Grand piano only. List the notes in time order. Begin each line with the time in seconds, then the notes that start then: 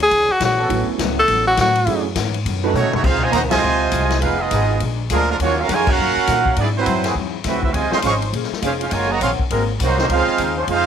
0.69 A3 B3 C#4 E4 F#4
1.87 A3 C#4 E4 F#4 G#4
2.64 A3 C#4 D#4 F#4 A4